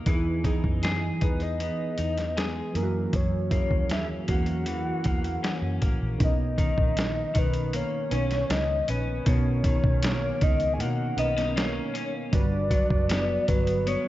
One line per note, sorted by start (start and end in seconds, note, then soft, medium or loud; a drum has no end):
0.00 0.14 A#3 medium
0.00 0.14 D#4 soft
0.06 0.52 E2 medium
0.06 0.42 E3 medium
0.06 3.17 E3 medium
0.06 0.42 B3 medium
0.06 0.43 D#4 medium
0.06 0.43 G#4 medium
0.06 kick loud
0.06 closed hi-hat medium
0.43 1.16 E3 medium
0.43 1.16 B3 medium
0.43 1.20 D#4 medium
0.43 1.16 D#4 medium
0.43 1.17 G#4 medium
0.43 kick medium
0.43 closed hi-hat medium
0.64 1.10 F#2 medium
0.64 kick medium
0.83 2.36 G#4 medium
0.83 snare loud
0.83 closed hi-hat medium
1.21 1.68 E2 medium
1.21 2.64 E3 medium
1.21 2.65 B3 medium
1.21 1.97 D#4 medium
1.21 2.65 D#4 medium
1.21 2.66 G#4 medium
1.21 1.44 B4 medium
1.21 kick medium
1.21 closed hi-hat medium
1.40 1.61 D#5 medium
1.40 closed hi-hat soft
1.60 2.83 B3 medium
1.60 2.39 D#5 medium
1.60 closed hi-hat medium
1.98 2.60 E2 medium
1.98 2.83 D#4 medium
1.98 closed hi-hat medium
2.18 snare soft
2.18 closed hi-hat soft
2.37 2.83 G#4 medium
2.37 2.76 G#4 medium
2.37 snare loud
2.37 closed hi-hat medium
2.74 3.06 F#2 medium
2.74 3.12 F#2 medium
2.74 3.46 E3 medium
2.74 3.47 A#3 medium
2.74 3.47 C#4 medium
2.74 2.82 E4 medium
2.74 3.17 A#4 medium
2.74 closed hi-hat medium
2.83 3.51 F#4 medium
3.13 3.60 F#2 medium
3.13 6.20 F#2 medium
3.13 3.91 C#5 medium
3.13 kick loud
3.13 closed hi-hat medium
3.50 4.23 A#3 medium
3.50 4.28 A#3 medium
3.50 4.23 C#4 medium
3.50 4.22 E4 medium
3.50 4.24 G#4 medium
3.50 kick medium
3.50 closed hi-hat medium
3.71 4.17 D#2 medium
3.71 kick medium
3.90 5.43 C#4 medium
3.90 4.06 E5 medium
3.90 snare loud
3.90 closed hi-hat medium
4.27 4.90 E2 medium
4.27 5.71 E3 medium
4.27 5.71 A#3 medium
4.27 5.04 A#3 medium
4.27 5.71 C#4 medium
4.27 5.72 F#4 medium
4.27 5.79 F#5 loud
4.27 kick medium
4.27 closed hi-hat medium
4.46 closed hi-hat soft
4.66 6.28 E3 medium
4.66 closed hi-hat medium
5.04 5.36 E2 medium
5.04 5.81 A#3 medium
5.04 kick medium
5.04 closed hi-hat medium
5.24 closed hi-hat soft
5.43 6.61 C#4 medium
5.43 snare loud
5.43 closed hi-hat medium
5.62 5.78 F#2 medium
5.81 5.97 A1 medium
5.81 7.73 A#3 medium
5.81 kick medium
5.81 closed hi-hat medium
6.01 6.17 A#1 medium
6.18 6.66 B1 loud
6.18 7.63 B3 medium
6.18 7.63 C#4 medium
6.18 7.63 D#4 medium
6.18 7.62 A#4 medium
6.18 kick loud
6.18 closed hi-hat medium
6.24 7.40 D#5 loud
6.58 7.33 D#3 medium
6.58 kick medium
6.58 closed hi-hat medium
6.78 7.24 A#1 medium
6.78 kick loud
6.97 snare loud
6.97 closed hi-hat medium
7.34 7.81 B1 medium
7.34 9.65 D#3 medium
7.34 kick loud
7.34 closed hi-hat medium
7.39 7.77 B4 medium
7.54 closed hi-hat soft
7.73 8.50 A#3 medium
7.73 8.53 C#5 medium
7.73 closed hi-hat medium
8.10 8.42 B1 loud
8.10 9.18 B3 medium
8.10 9.19 C#4 medium
8.10 8.87 C#4 medium
8.10 9.19 D#4 medium
8.10 9.20 C#5 medium
8.10 closed hi-hat medium
8.31 snare soft
8.31 closed hi-hat soft
8.50 8.81 C#2 medium
8.50 8.89 D#5 loud
8.50 snare loud
8.50 closed hi-hat medium
8.88 9.19 A#1 medium
8.88 11.18 C#4 medium
8.88 9.30 B4 loud
8.88 closed hi-hat medium
9.25 9.72 B1 loud
9.25 12.33 B2 medium
9.25 10.70 B3 medium
9.25 10.69 C#4 medium
9.25 10.69 D#4 medium
9.25 10.69 A#4 medium
9.25 10.45 C#5 loud
9.25 kick loud
9.25 closed hi-hat medium
9.64 10.41 D#3 medium
9.64 kick loud
9.64 closed hi-hat medium
9.84 10.30 B1 medium
9.84 kick medium
10.03 10.79 A#3 medium
10.03 snare loud
10.03 closed hi-hat loud
10.41 10.80 C#2 medium
10.41 12.41 D#3 medium
10.41 10.73 D#5 loud
10.41 kick loud
10.41 closed hi-hat medium
10.60 closed hi-hat soft
10.74 10.82 G#5 medium
10.79 11.10 B2 loud
10.79 11.55 A#3 medium
10.79 11.21 F#5 loud
10.79 closed hi-hat medium
11.17 11.79 B1 medium
11.17 11.37 B3 medium
11.17 12.26 B3 medium
11.17 12.25 C#4 medium
11.17 12.26 D#4 medium
11.17 12.25 A#4 medium
11.17 11.59 D#5 loud
11.17 closed hi-hat medium
11.37 11.93 C#4 medium
11.37 snare soft
11.37 closed hi-hat soft
11.56 12.41 A#3 medium
11.56 12.14 C#5 loud
11.56 snare loud
11.56 closed hi-hat medium
11.94 12.41 C#4 medium
11.94 closed hi-hat medium
12.32 12.79 G1 medium
12.32 13.75 G3 medium
12.32 13.76 D4 medium
12.32 13.76 F#4 medium
12.32 13.77 B4 medium
12.32 13.50 D5 loud
12.32 kick loud
12.32 closed hi-hat medium
12.71 13.47 F#3 medium
12.71 kick loud
12.71 closed hi-hat medium
12.90 13.37 F#1 medium
12.90 kick medium
13.09 13.86 B3 medium
13.09 snare loud
13.09 closed hi-hat medium
13.48 13.94 G1 medium
13.48 14.08 F#3 medium
13.48 13.87 B4 loud
13.48 kick loud
13.48 closed hi-hat medium
13.67 closed hi-hat soft
13.87 14.08 B3 medium
13.87 14.08 C#5 loud
13.87 closed hi-hat medium